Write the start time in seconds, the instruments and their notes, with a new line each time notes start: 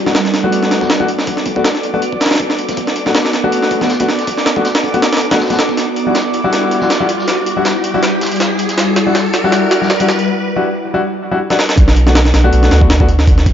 Already playing: ambient pad B3 F#4 A4 D5, synth texture D6, riser
0.06 grand piano A3 B3 D4 F#4, snare
0.15 snare, closed hi-hat
0.25 snare
0.33 ambient pad B3 F#4 A4 D5, snare, closed hi-hat
0.44 grand piano A3 B3 D4 F#4
0.52 closed hi-hat
0.63 snare
0.71 snare, closed hi-hat
0.81 grand piano A3 B3 D4 F#4, kick, snare
0.90 snare, closed hi-hat
1.00 grand piano A3 B3 D4 F#4, kick
1.08 closed hi-hat
1.19 snare
1.27 ambient pad B3 F#4 A4 D5, kick, closed hi-hat
1.37 snare, closed hi-hat
1.46 kick, closed hi-hat
1.56 grand piano A3 B3 D4 F#4, kick
1.64 snare, closed hi-hat
1.75 snare
1.83 ambient pad B3 F#4 A4 D5, closed hi-hat
1.94 grand piano A3 B3 D4 F#4, closed hi-hat
2.02 closed hi-hat
2.13 kick
2.20 snare, closed hi-hat
2.26 snare, closed hi-hat
2.31 snare, closed hi-hat
2.35 snare, closed hi-hat
2.39 kick, closed hi-hat
2.50 snare
2.58 closed hi-hat
2.69 kick, snare, closed hi-hat
2.77 ambient pad B3 F#4 A4 D5, kick, closed hi-hat
2.87 snare
2.96 closed hi-hat
3.06 grand piano A3 B3 D4 F#4, snare
3.15 snare, closed hi-hat
3.25 snare
3.33 ambient pad B3 F#4 A4 D5, snare, closed hi-hat
3.44 grand piano A3 B3 D4 F#4
3.52 closed hi-hat
3.62 snare
3.71 kick, closed hi-hat
3.81 grand piano A3 B3 D4 F#4, snare
3.89 snare, closed hi-hat
4.00 grand piano A3 B3 D4 F#4, kick, closed hi-hat
4.09 snare, closed hi-hat
4.19 snare, closed hi-hat
4.27 ambient pad B3 F#4 A4 D5, kick, closed hi-hat
4.38 snare
4.46 snare, closed hi-hat
4.56 grand piano A3 B3 D4 F#4, kick
4.65 snare, closed hi-hat
4.75 snare, closed hi-hat
4.84 ambient pad B3 F#4 A4 D5, kick, closed hi-hat
4.94 grand piano A3 B3 D4 F#4, closed hi-hat
5.02 snare, closed hi-hat
5.13 snare, closed hi-hat
5.17 snare, closed hi-hat
5.21 closed hi-hat
5.31 grand piano A3 B3 D4 F#4, snare, closed hi-hat
5.40 kick, snare, closed hi-hat
5.45 snare, closed hi-hat
5.50 grand piano A3 B3 D4 F#4, snare, closed hi-hat
5.54 snare, closed hi-hat
5.59 snare, closed hi-hat
5.69 kick, snare
5.77 ambient pad G3 E4 F#4 D5, snare, closed hi-hat
5.96 closed hi-hat
6.07 grand piano G3 D4 E4 F#4
6.14 snare, closed hi-hat
6.33 ambient pad G3 E4 F#4 D5, closed hi-hat
6.44 grand piano G3 D4 E4 F#4
6.53 snare, closed hi-hat
6.71 closed hi-hat
6.80 grand piano G3 D4 E4 F#4, snare
6.90 snare, closed hi-hat
7.00 grand piano G3 D4 E4 F#4
7.09 closed hi-hat
7.19 snare
7.27 ambient pad G3 E4 F#4 D5, snare, closed hi-hat
7.37 closed hi-hat
7.46 closed hi-hat
7.57 grand piano G3 D4 E4 F#4
7.65 snare, closed hi-hat
7.84 ambient pad G3 E4 F#4 D5, closed hi-hat
7.94 grand piano G3 D4 E4 F#4, closed hi-hat
8.03 snare, closed hi-hat
8.21 snare, closed hi-hat
8.27 closed hi-hat
8.32 closed hi-hat
8.36 closed hi-hat
8.40 snare, closed hi-hat
8.59 closed hi-hat
8.69 snare, closed hi-hat
8.77 ambient pad G3 E4 F#4 D5, snare, closed hi-hat
8.96 snare, closed hi-hat
9.06 grand piano G3 D4 E4 F#4
9.15 snare, closed hi-hat
9.33 ambient pad G3 E4 F#4 D5, snare, closed hi-hat
9.44 grand piano G3 D4 E4 F#4
9.52 snare, closed hi-hat
9.71 snare, closed hi-hat
9.82 grand piano G3 D4 E4 F#4, snare
9.90 snare, closed hi-hat
10.00 grand piano G3 D4 E4 F#4, closed hi-hat
10.08 snare, closed hi-hat
10.19 closed hi-hat
10.56 grand piano G3 D4 E4 F#4
10.94 grand piano G3 D4 E4 F#4
11.31 grand piano G3 D4 E4 F#4
11.50 grand piano G3 D4 E4 F#4, snare
11.59 snare
11.69 snare
11.78 sub bass B1, kick, closed hi-hat
11.88 snare
11.96 closed hi-hat
12.07 grand piano A3 B3 D4 F#4, snare
12.15 snare, closed hi-hat
12.25 snare
12.34 sub bass B1, snare, closed hi-hat
12.44 grand piano A3 B3 D4 F#4
12.53 sub bass B1, closed hi-hat
12.63 snare
12.71 sub bass D2, snare, closed hi-hat
12.81 grand piano A3 B3 D4 F#4, kick
12.90 snare, closed hi-hat
13.00 grand piano A3 B3 D4 F#4, kick
13.09 closed hi-hat
13.19 snare
13.27 kick, closed hi-hat
13.38 snare
13.46 kick, closed hi-hat